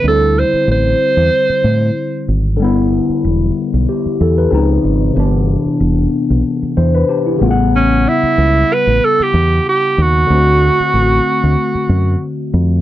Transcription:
X:1
M:4/4
L:1/16
Q:"Swing 16ths" 1/4=94
K:Dmix
V:1 name="Alto saxophone"
A2 c2 c8- c2 z2 | z16 | z16 | ^C2 E4 B2 A G3 G2 F2- |
F12 z4 |]
V:2 name="Tine electric piano"
z16 | z8 G2 A B2 z3 | z8 z2 c B G E2 z | z16 |
z16 |]
V:3 name="Tine electric piano"
[D,G,CE]16 | [D,G,B,E]12 [^C,^E,^B,^D]4 | [C,E,B,D]12- [C,E,B,D]2 [^C,G,B,=F^f]2- | [^C,G,B,=F^f]12- [C,G,B,=F^f]2 z2 |
[D,A,CF]16 |]
V:4 name="Fingered electric bass" clef=bass
D,,3 z A,,,2 z E,, z2 A,,2 z2 _A,,,2 | G,,,3 z E,,,2 z B,,, z2 E,,2 ^C,,2 ^G,,,2 | G,,,3 z E,,,2 z B,,, z2 E,,2 z2 A,,,2- | A,,,3 z ^C,,2 z A,,, z2 E,,2 z2 _E,,2 |
D,,3 z A,,,2 z D,, z2 F,,2 z2 =F,,2 |]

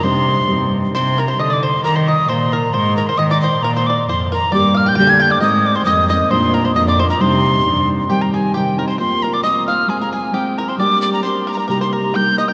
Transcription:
X:1
M:2/4
L:1/16
Q:"Swing" 1/4=134
K:Cm
V:1 name="Tin whistle"
c'6 z2 | c'2 b c' e' d' c'2 | b c' e'2 c'2 b2 | c'2 b c' e' d' c'2 |
b c' d'2 c'2 b2 | d'2 f' g' g' a' g' d' | e'2 d' c' e'2 e'2 | c'2 b c' e' d' c' b |
c'6 z2 | g b a2 g2 b c' | c'2 b d' e'2 f'2 | a b a2 g2 b c' |
d'2 d' b c'2 b/2 b/2 b | b c' b2 g'2 e' g' |]
V:2 name="Five-string banjo"
c6 z2 | c2 B c e d c2 | B c e2 c2 B2 | c2 B c e d c2 |
B c d2 c2 B2 | d2 f g g a g d | e3 c e2 e2 | c2 B c e d c B |
c6 z2 | G B A2 G2 B c | c2 B d e2 f2 | A B A2 G2 B c |
d2 d2 c2 B B | B c B2 g2 e g |]
V:3 name="Flute"
c6 z2 | c2 B c e d c2 | B c e2 c2 B2 | c2 B2 e d c2 |
B c d2 c2 B2 | d2 f g g2 g d | e2 d c e2 e2 | c3 c e d c B |
c6 z2 | z8 | z8 | z8 |
z8 | z8 |]
V:4 name="Steel-string acoustic guitar"
[C,G,CDE]4 [G,CDE]4 | z8 | z8 | z8 |
z8 | [G,B,DG]4 [G,B,DG]4 | [A,CEB]4 [A,CEB]2 [CEB]2 | [B,DFB]4 [B,DFB]2 [DFB]2 |
[C,G,CDE]4 [G,CDE]4 | [C,E,G,CE]4 [E,G,CE]2 [G,CE]2 | [B,CFB]4 [B,CFB]4 | [A,CFA]4 [A,CFA]4 |
[G,B,DG]4 [G,B,DG]4 | [C,G,B,EG]4 [G,B,EG]4 |]
V:5 name="Cello" clef=bass
C,4 G,,4 | C,4 D,4 | E,4 B,,4 | A,,4 E,4 |
B,,4 F,,4 | G,,4 D,4 | A,,4 F,,4 | B,,4 F,,4 |
C,4 G,,4 | z8 | z8 | z8 |
z8 | z8 |]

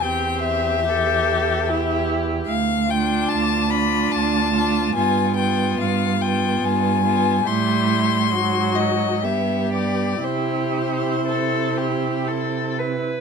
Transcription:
X:1
M:3/4
L:1/16
Q:1/4=71
K:C
V:1 name="Violin"
g2 e8 z2 | f2 g2 a2 b2 a4 | _a2 g2 f2 g2 a4 | c'6 _e2 =e2 d2 |
c8- c2 z2 |]
V:2 name="Violin"
G4 A4 G4 | z2 F4 F4 F2 | F2 F4 F4 F2 | E4 _G4 =G4 |
G4 A2 G2 A2 B2 |]
V:3 name="Viola"
C4 G4 E4 | z2 D4 D4 D2 | B,2 B,4 B,4 B,2 | G,4 _G,4 B,4 |
E8- E3 z |]
V:4 name="Cello" clef=bass
E,,12 | D,,4 D,,4 D,,4 | G,,4 G,,4 G,,4 | A,,4 _A,,4 G,,4 |
C,8- C,3 z |]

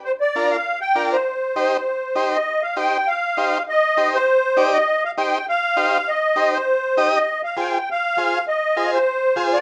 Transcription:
X:1
M:4/4
L:1/8
Q:1/4=200
K:Cm
V:1 name="Accordion"
c d2 f2 g2 c- | c6- c e- | e f g2 f4 | e3 c4 e- |
e f g2 f4 | e3 c4 e- | e f g2 f4 | e3 c4 d |]
V:2 name="Transistor combo organ"
z2 [DFB] z3 [DFB] z | z2 [EGc] z3 [EGc] z | z2 [EGc] z3 [EGc] z | z2 [EGc] z3 [EGd] z |
z2 [EGc] z3 [EGc] z | z2 [EGc] z3 [EGe] z | z2 [FAc] z3 [FAc] z | z2 [FAc] z3 [FAc] z |]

